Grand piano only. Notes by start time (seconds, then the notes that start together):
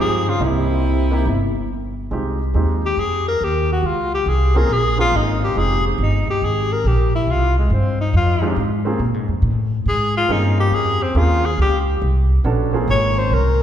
Already playing: C4 D#4 G4 G#4
0.40 A#3 E4 G4 D#5
1.11 A#3 D#4 E4 G4
2.11 G#3 C4 D#4 F4 G4
2.55 G#3 C4 D#4 F4 G4
4.55 A#3 C4 C#4 F4 G#4
4.97 A#3 C4 C#4 F4 G#4
5.55 G#3 C4 D#4 F4 G4
8.42 G#3 C4 D#4 F4 G4
8.85 A#3 C4 C#4 F4 G#4
10.29 A#3 C4 C#4 F4 G#4
11.15 A#3 C4 C#4 F4 G#4
12.44 B3 C#4 D4 F#4 A4
12.73 A#3 C4 C#4 F4 G#4